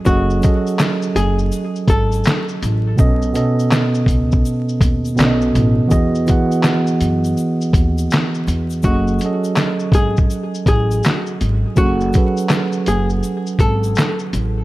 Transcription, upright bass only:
X:1
M:4/4
L:1/16
Q:"Swing 16ths" 1/4=82
K:F#dor
V:1 name="Upright bass" clef=bass
F,,,2 z4 F,,,2 z2 G,,,2 z2 A,,,2 | B,,,2 z4 C,,2 z2 D,,2 B,,,2 A,,, z | E,,2 z4 F,,2 z2 D,,2 z2 E,,2 | F,,,2 z4 G,,,2 z2 A,,,2 z2 G,,, z |
F,,,2 z4 F,,,2 z2 G,,,2 z2 A,,,2 |]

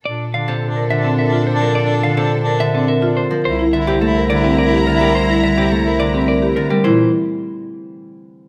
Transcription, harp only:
X:1
M:3/4
L:1/16
Q:1/4=106
K:Bblyd
V:1 name="Harp" clef=bass
z2 D, C,3 D,4- D, F,- | F,2 D, C,3 D,4- D, F, | z2 D, C, A,2 D,4 D, G,- | G,2 D, C, A,2 D,4 D, G, |
E,2 z8 z2 |]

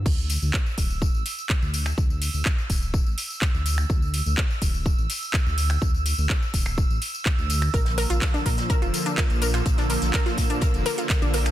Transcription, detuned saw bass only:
X:1
M:4/4
L:1/16
Q:1/4=125
K:Dm
V:1 name="Detuned saw bass" clef=bass
D,,3 D,, z2 D,,,3 A,,, z3 D,,3 | D,,3 D,, z2 D,,,3 A,,, z3 D,,3 | D,,3 D,, z2 D,,,3 A,,, z3 D,,3 | D,,3 D,, z2 D,,,3 A,,, z3 D,,3 |
B,,,3 B,,, z2 B,,3 F,,, z3 B,,,3 | B,,,3 B,,, z2 B,,3 F,,, z3 B,,,3 |]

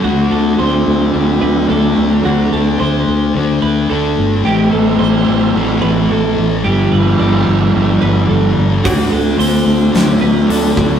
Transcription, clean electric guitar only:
X:1
M:4/4
L:1/8
Q:1/4=109
K:Dmix
V:1 name="Clean electric guitar"
F A c2 z B A2 | F A c2 z B A2 | G A c2 z B A2 | G B d2 z B A2 |
F A c2 z B A2 |]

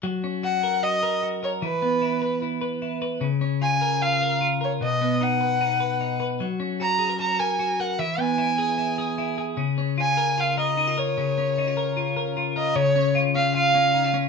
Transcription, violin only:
X:1
M:4/4
L:1/8
Q:1/4=151
K:F#
V:1 name="Violin"
z2 f2 d2 z c | B4 z4 | z2 g2 e2 z c | d2 f4- f z |
z2 a2 a g2 f | =e g6 z | z2 g2 e d2 c- | c6 z d |
c2 z e e3 z |]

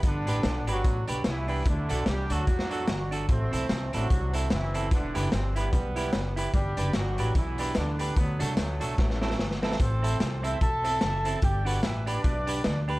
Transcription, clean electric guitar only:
X:1
M:4/4
L:1/8
Q:"Swing" 1/4=148
K:Ador
V:1 name="Clean electric guitar"
z [DGB] z [DGB] z [DGB] z [DGB] | z [DFA] z [DFA] z [DFA] z [DFA] | z [CEA] z [CEA] z [CEA] z [CEA] | z [EGB] z [EGB] z [EGB] z [EGB] |
z [DGB] z [DGB] z [DGB] z [DGB] | z [DFA] z [DFA] z [CEA] z [CEA] | z [CEA] z [CEA] z [CEA] z [CEA] | z [DGB] z [DGB] z [DGB] z [DGB] |]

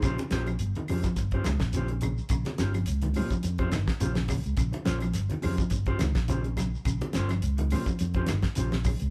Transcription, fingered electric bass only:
X:1
M:4/4
L:1/16
Q:"Swing 16ths" 1/4=105
K:Bbdor
V:1 name="Fingered electric bass" clef=bass
B,,, z B,,,2 G,,, z F,, z G,,,2 D,, B,,,4- B,,, | B,,, z G,,,2 D,,2 B,, z F,,2 G,,, z B,,,3 D,, | B,,, z B,,,2 G,,, z F,, z G,,,2 D,, B,,,4- B,,, | B,,, z G,,,2 D,,2 B,, z F,,2 G,,, z B,,,3 D,, |]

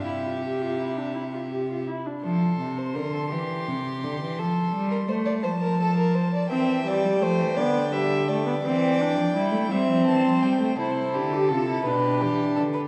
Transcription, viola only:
X:1
M:6/8
L:1/16
Q:3/8=56
K:Cmix
V:1 name="Viola"
E F G F E D E F G F E D | z12 | z12 | C2 G,2 A,2 =B,2 G,2 A, B, |
C2 D2 E2 C6 | [K:C] E3 G F E D6 |]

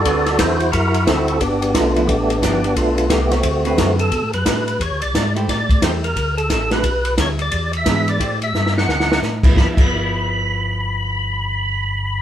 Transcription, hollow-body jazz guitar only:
X:1
M:4/4
L:1/8
Q:"Swing" 1/4=177
K:Ddor
V:1 name="Hollow-body jazz guitar"
[D,C^FB] z [D,CFB] z4 z | z3 [F,B,E] z2 [F,B,E] z | z4 z [D,C^FB]3 | z2 [A,D^F] z4 [A,EGc] |
z2 [A,EGc] z4 [A,D^F] | z6 [E,B,D^G]2 | [A,EGc] z6 [F,B,E] | [F,B,E] [F,B,E]6- [F,B,E]- |
[F,B,E]8 |]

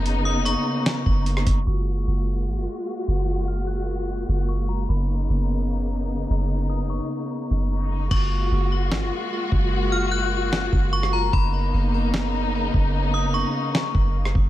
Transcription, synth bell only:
X:1
M:4/4
L:1/8
Q:1/4=149
K:F#
V:1 name="Synth bell"
z d' c'6 | z8 | z e' f'4 c' a | b2 z6 |
z d' c'6 | c'2 z6 | z e' f'4 c' a | b2 z6 |
z d' c'6 |]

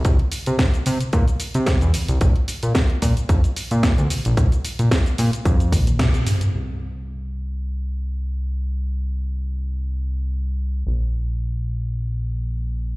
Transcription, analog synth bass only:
X:1
M:4/4
L:1/16
Q:"Swing 16ths" 1/4=111
K:Bblyd
V:1 name="Analog synth bass" clef=bass
C,, z2 C, z2 C, z B,, z2 C,2 E,, C,, C,, | B,,, z2 B,, z2 B,, z F,, z2 B,,2 D,, B,,, B,,, | B,,, z2 B,, z2 B,, z F,,2 B,,,3 z3 | C,,16- |
C,,16 | B,,,16 |]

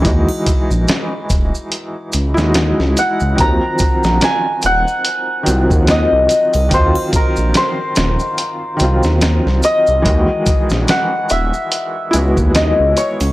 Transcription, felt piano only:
X:1
M:4/4
L:1/16
Q:"Swing 16ths" 1/4=72
K:Ebdor
V:1 name="Felt piano" clef=bass
[=E,^G,^D^F]8- [E,G,DF]2 z [G,D=EF]4- [G,DEF] | [E,F,G,C]8- [E,F,G,C]2 [E,F,G,C]6 | [E,G,CF]8- [E,G,CF]2 [E,G,CF]6 | [^D,=E,^G,^F]8- [D,E,G,F]2 [G,=B,=EF]6 |]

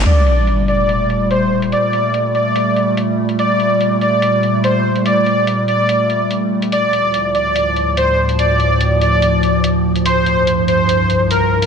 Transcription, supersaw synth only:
X:1
M:4/4
L:1/8
Q:1/4=144
K:Gm
V:1 name="Supersaw synth"
d3 d3 c z | d3 d3 z2 | d3 d3 c z | d3 d3 z2 |
d3 d3 c z | d3 d3 z2 | c3 c3 B z |]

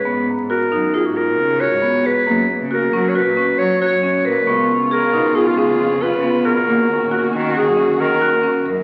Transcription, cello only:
X:1
M:5/4
L:1/16
Q:1/4=136
K:Abdor
V:1 name="Cello" clef=bass
A,,2 z A,,2 z G,,2 z A,,3 D,3 A,,3 A,, z | G,,3 D,3 G,3 B,,2 z G,2 z G,,3 B,,2 | D,,2 z D,,2 z C,2 z D,,3 F,,3 D,3 C, z | E,,3 B,,3 E,3 G,,2 z E,2 z E,,3 G,,2 |]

